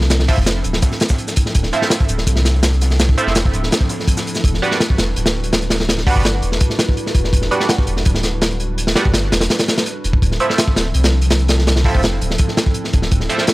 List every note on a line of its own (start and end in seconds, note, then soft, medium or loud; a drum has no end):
0.00 0.27 C2 loud
0.00 snare soft
0.10 1.34 F3 medium
0.10 1.34 C4 medium
0.10 1.34 D4 medium
0.10 1.34 E4 medium
0.10 1.34 A4 loud
0.10 snare loud
0.10 closed hi-hat medium
0.10 shaker medium
0.20 snare medium
0.28 0.36 F3 loud
0.28 0.36 A3 loud
0.28 0.36 C4 medium
0.28 0.36 E4 loud
0.28 kick medium
0.28 open hi-hat medium
0.28 shaker medium
0.38 0.63 F1 medium
0.38 kick loud
0.46 snare loud
0.46 closed hi-hat medium
0.46 shaker loud
0.64 0.81 D1 loud
0.64 closed hi-hat medium
0.64 shaker medium
0.73 snare medium
0.82 kick loud
0.82 snare loud
0.82 closed hi-hat medium
0.82 shaker medium
0.92 snare soft
0.92 closed hi-hat soft
1.00 snare loud
1.00 closed hi-hat medium
1.00 shaker medium
1.09 kick medium
1.09 snare loud
1.09 shaker medium
1.18 closed hi-hat soft
1.18 closed hi-hat medium
1.28 snare soft
1.28 shaker medium
1.36 kick medium
1.36 closed hi-hat medium
1.36 shaker medium
1.46 snare soft
1.55 1.71 D1 medium
1.55 2.79 F3 medium
1.55 2.79 C4 medium
1.55 2.79 D4 medium
1.55 2.79 E4 medium
1.55 2.79 A4 loud
1.55 kick loud
1.55 closed hi-hat loud
1.55 shaker medium
1.63 snare soft
1.73 1.81 F3 loud
1.73 1.81 A3 medium
1.73 1.81 C4 medium
1.73 1.81 E4 loud
1.73 closed hi-hat medium
1.73 shaker medium
1.82 1.89 F3 medium
1.82 1.89 A3 medium
1.82 1.89 C4 medium
1.82 1.89 E4 loud
1.82 snare medium
1.82 snare soft
1.90 snare loud
1.90 closed hi-hat medium
1.90 shaker medium
2.00 kick medium
2.00 closed hi-hat soft
2.09 2.25 D1 loud
2.09 closed hi-hat medium
2.09 shaker medium
2.18 snare soft
2.27 3.16 C2 loud
2.27 kick loud
2.27 closed hi-hat medium
2.27 shaker medium
2.36 snare medium
2.36 closed hi-hat soft
2.45 snare medium
2.45 closed hi-hat medium
2.45 shaker medium
2.54 snare medium
2.63 snare loud
2.63 closed hi-hat medium
2.63 shaker medium
2.73 closed hi-hat soft
2.81 snare loud
2.81 closed hi-hat medium
2.81 shaker medium
2.90 snare soft
2.90 closed hi-hat soft
2.99 4.24 F3 medium
2.99 4.24 C4 medium
2.99 4.24 D4 medium
2.99 4.24 E4 medium
2.99 4.24 A4 loud
2.99 snare loud
2.99 closed hi-hat medium
2.99 shaker medium
3.09 kick medium
3.18 3.25 F3 loud
3.18 3.25 A3 medium
3.18 3.25 C4 medium
3.18 3.25 E4 loud
3.18 closed hi-hat medium
3.18 shaker medium
3.27 3.52 F1 medium
3.27 3.33 F3 medium
3.27 3.33 A3 medium
3.27 3.33 C4 medium
3.27 3.33 E4 loud
3.27 snare soft
3.35 snare loud
3.35 closed hi-hat medium
3.35 shaker medium
3.45 kick medium
3.54 3.70 D1 medium
3.54 closed hi-hat medium
3.54 shaker medium
3.63 snare soft
3.71 snare loud
3.71 closed hi-hat medium
3.71 shaker medium
3.81 kick medium
3.81 closed hi-hat soft
3.89 snare loud
3.89 closed hi-hat medium
3.89 shaker medium
4.00 snare soft
4.08 kick loud
4.08 closed hi-hat medium
4.08 shaker medium
4.17 snare loud
4.17 snare soft
4.17 shaker medium
4.27 closed hi-hat medium
4.35 snare soft
4.35 shaker medium
4.44 4.60 E1 loud
4.44 5.68 G3 medium
4.44 5.68 D4 medium
4.44 5.68 E4 medium
4.44 5.68 F#4 medium
4.44 5.68 B4 loud
4.44 kick loud
4.44 closed hi-hat medium
4.54 snare soft
4.62 4.70 G3 loud
4.62 4.70 B3 loud
4.62 4.70 D4 medium
4.62 4.70 F#4 loud
4.62 closed hi-hat medium
4.71 4.78 G3 medium
4.71 4.78 B3 medium
4.71 4.78 D4 medium
4.71 4.78 F#4 loud
4.71 snare soft
4.80 snare loud
4.80 closed hi-hat medium
4.90 kick medium
4.98 5.15 E1 loud
4.98 snare loud
4.98 closed hi-hat medium
5.16 6.05 D1 loud
5.16 closed hi-hat medium
5.26 snare loud
5.26 closed hi-hat medium
5.44 closed hi-hat medium
5.53 snare loud
5.53 closed hi-hat medium
5.62 closed hi-hat soft
5.70 snare loud
5.70 closed hi-hat medium
5.80 snare soft
5.89 7.13 G3 medium
5.89 7.13 D4 medium
5.89 7.13 E4 medium
5.89 7.13 F#4 medium
5.89 7.13 B4 loud
5.89 snare loud
5.89 closed hi-hat medium
5.98 snare medium
6.07 6.14 G3 loud
6.07 6.14 B3 medium
6.07 6.14 D4 medium
6.07 6.14 F#4 loud
6.07 kick loud
6.07 open hi-hat medium
6.16 6.41 G1 medium
6.16 6.22 G3 medium
6.16 6.22 B3 medium
6.16 6.22 D4 medium
6.16 6.22 F#4 loud
6.16 kick medium
6.25 snare loud
6.25 closed hi-hat medium
6.42 6.59 E1 loud
6.42 closed hi-hat medium
6.52 snare soft
6.60 kick loud
6.60 closed hi-hat medium
6.70 snare soft
6.79 snare loud
6.79 closed hi-hat medium
6.89 kick medium
6.97 closed hi-hat medium
7.06 snare soft
7.14 7.31 E1 loud
7.14 kick loud
7.14 closed hi-hat medium
7.24 snare soft
7.33 7.49 E1 loud
7.33 8.57 G3 loud
7.33 8.57 D4 medium
7.33 8.57 E4 medium
7.33 8.57 F#4 medium
7.33 8.57 B4 loud
7.33 kick loud
7.33 closed hi-hat medium
7.42 snare soft
7.51 7.59 G3 loud
7.51 7.59 B3 medium
7.51 7.59 D4 medium
7.51 7.59 F#4 loud
7.51 closed hi-hat medium
7.60 7.67 G3 medium
7.60 7.67 B3 medium
7.60 7.67 D4 medium
7.60 7.67 F#4 loud
7.60 snare soft
7.69 snare loud
7.69 closed hi-hat medium
7.78 kick medium
7.87 8.04 E1 medium
7.87 closed hi-hat medium
7.97 snare soft
8.05 8.95 D1 loud
8.05 kick loud
8.05 closed hi-hat medium
8.15 snare medium
8.23 snare medium
8.23 closed hi-hat medium
8.41 snare loud
8.41 closed hi-hat medium
8.51 closed hi-hat soft
8.60 closed hi-hat medium
8.78 9.66 G3 medium
8.78 9.66 D4 medium
8.78 9.66 E4 medium
8.78 9.66 F#4 medium
8.78 9.66 B4 loud
8.78 closed hi-hat medium
8.87 snare medium
8.96 9.04 G3 loud
8.96 9.04 B3 medium
8.96 9.04 D4 medium
8.96 9.04 F#4 loud
8.96 snare loud
8.96 closed hi-hat medium
9.05 9.31 G1 medium
9.05 kick loud
9.14 snare loud
9.14 closed hi-hat medium
9.32 9.48 E1 medium
9.32 snare loud
9.32 closed hi-hat medium
9.41 snare loud
9.41 closed hi-hat medium
9.50 snare loud
9.50 closed hi-hat medium
9.59 snare loud
9.59 closed hi-hat medium
9.68 snare loud
9.68 closed hi-hat medium
9.78 snare loud
9.78 closed hi-hat medium
9.86 closed hi-hat medium
10.04 10.21 E1 loud
10.04 closed hi-hat medium
10.13 kick loud
10.22 10.39 D1 loud
10.22 11.47 F3 medium
10.22 11.47 C4 medium
10.22 11.47 D4 medium
10.22 11.47 E4 medium
10.22 11.47 A4 loud
10.22 kick loud
10.22 closed hi-hat medium
10.32 snare soft
10.40 10.48 F3 loud
10.40 10.48 A3 loud
10.40 10.48 C4 loud
10.40 10.48 E4 loud
10.40 closed hi-hat medium
10.49 10.56 F3 medium
10.49 10.56 A3 medium
10.49 10.56 C4 medium
10.49 10.56 E4 loud
10.49 snare soft
10.58 snare loud
10.58 closed hi-hat loud
10.68 kick medium
10.76 10.93 D1 loud
10.76 snare loud
10.76 closed hi-hat medium
10.94 11.84 C2 loud
10.94 closed hi-hat medium
11.04 snare loud
11.04 closed hi-hat medium
11.21 closed hi-hat medium
11.30 snare loud
11.30 closed hi-hat medium
11.39 closed hi-hat soft
11.48 snare loud
11.48 closed hi-hat medium
11.59 snare soft
11.67 12.91 F3 medium
11.67 12.91 C4 medium
11.67 12.91 D4 medium
11.67 12.91 E4 medium
11.67 12.91 A4 loud
11.67 snare loud
11.67 closed hi-hat medium
11.76 snare medium
11.84 11.93 F3 loud
11.84 11.93 A3 loud
11.84 11.93 C4 medium
11.84 11.93 E4 loud
11.84 kick medium
11.84 open hi-hat medium
11.94 12.20 F1 medium
11.94 12.01 F3 medium
11.94 12.01 A3 medium
11.94 12.01 C4 medium
11.94 12.01 E4 loud
11.94 kick loud
12.03 snare loud
12.03 closed hi-hat medium
12.21 12.37 D1 medium
12.21 closed hi-hat medium
12.31 snare soft
12.38 kick loud
12.38 closed hi-hat medium
12.48 snare soft
12.57 snare loud
12.57 closed hi-hat medium
12.66 kick loud
12.74 closed hi-hat medium
12.84 snare soft
12.93 13.10 D1 medium
12.93 kick loud
12.93 closed hi-hat medium
13.02 snare medium
13.11 13.28 D1 medium
13.11 13.54 F3 medium
13.11 13.54 C4 medium
13.11 13.54 D4 medium
13.11 13.54 E4 medium
13.11 13.54 A4 loud
13.11 kick loud
13.11 closed hi-hat medium
13.20 snare soft
13.30 13.37 F3 loud
13.30 13.37 A3 medium
13.30 13.37 C4 medium
13.30 13.37 E4 loud
13.30 closed hi-hat medium
13.38 13.45 F3 medium
13.38 13.45 A3 medium
13.38 13.45 C4 medium
13.38 13.45 E4 loud
13.38 snare soft
13.47 snare loud
13.47 closed hi-hat medium